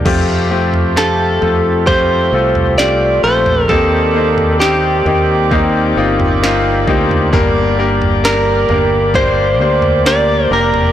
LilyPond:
<<
  \new Staff \with { instrumentName = "Clean electric guitar" } { \time 4/4 \key f \mixolydian \tempo 4 = 66 r4 a'4 c''4 d''8 c''8 | a'4 g'2 r4 | r4 bes'4 c''4 d''8 bes'8 | }
  \new Staff \with { instrumentName = "Tonewheel organ" } { \time 4/4 \key f \mixolydian <a f' g'>1 | <bes c' ees' d''>1 | <bes g'>1 | }
  \new Staff \with { instrumentName = "Grand piano" } { \time 4/4 \key f \mixolydian <a c' f' g'>8 <a c' f' g'>8 <a c' f' g'>8 <a c' f' a'>8 <a c' f' g'>8 <a c' f' a'>8 <a c' f' g'>8 <a c' f' a'>8 | <bes c' ees' g'>8 <bes c' ees' c''>8 <bes c' ees' g'>8 <bes c' ees' g'>8 <bes c' ees' g'>8 <bes c' ees' f'>8 <bes c' ees' f'>8 <bes c' ees' g'>8 | <bes d' g' bes'>8 <bes d' g' bes'>8 <bes d' g' bes'>8 <bes d' g' bes'>8 <bes d' g' c''>8 <bes d' g' c''>8 <bes d' g' bes'>8 <bes d' g' bes'>8 | }
  \new Staff \with { instrumentName = "Grand piano" } { \clef bass \time 4/4 \key f \mixolydian c4. r2 r8 | ees4. r2 r8 | <g, d>4. r2 r8 | }
  \new Staff \with { instrumentName = "Fingered electric bass" } { \clef bass \time 4/4 \key f \mixolydian f,4. f,4 c,4 bes,,8 | ees,4. ees,4 g,,4 d,8 | g,,4. g,,4 d,4 f,,8 | }
  \new DrumStaff \with { instrumentName = "Drums" } \drummode { \time 4/4 <cymc bd tomfh>8. tomfh16 sn8 tomfh8 <bd tomfh>8. tomfh16 sn8. tomfh16 | <bd tomfh>8. tomfh16 sn8 tomfh8 <bd tomfh>8. tomfh16 sn8 bd16 tomfh16 | <bd tomfh>8. tomfh16 sn8 tomfh8 <bd tomfh>8. tomfh16 sn8. tomfh16 | }
>>